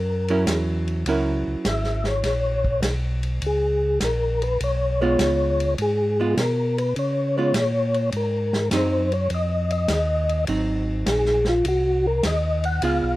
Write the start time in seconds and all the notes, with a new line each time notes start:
Already playing: F#2 A#4
0.28 F#3 C#4 E4 A#4, ride
0.47 E2, snare, hi-hat pedal, ride
0.88 ride
1.06 C#2 F#3 C#4 E4 A#4, ride
1.47 C#2
1.65 G#1 E5, snare, hi-hat pedal, ride
1.84 snare
2.04 snare
2.08 C#5
2.24 A#1, snare, ride
2.65 kick
2.82 B1, snare, hi-hat pedal, ride
3.23 ride
3.42 C#2, ride
3.46 G#4
4.00 A#1, snare, hi-hat pedal, ride
4.04 A#4
4.42 B4, ride
4.60 B1 C#5, ride
5.01 G#3 B3 F4 C#5
5.19 C#2, snare, hi-hat pedal, ride
5.60 ride
5.78 G#2 G#4, ride
6.20 G#3 B3 F4
6.37 B2 A#4, snare, hi-hat pedal, ride
6.78 B4, ride
6.96 C#3 C#5, ride
7.38 G#3 B3 F4 C#5
7.54 A#2, snare, hi-hat pedal, ride
7.94 ride
8.12 G#2, ride
8.17 A#4
8.53 snare
8.71 F#2 F#3 C4 D#4, snare, hi-hat pedal, ride
8.75 C5
9.12 C#5, ride
9.30 F2, ride
9.35 D#5
9.71 D#5, ride
9.88 D#2, snare, hi-hat pedal, ride
10.29 ride
10.47 G#1 F#3 C4 D#4, ride
11.06 A#1 G#4, snare, hi-hat pedal, ride
11.25 snare
11.45 snare
11.49 F4
11.65 C2 F#4, ride
12.07 A#4
12.23 D#2 D#5, snare, hi-hat pedal, ride
12.64 F#5, ride
12.82 C#2 B3 F4 G#4 F5, ride
13.03 B1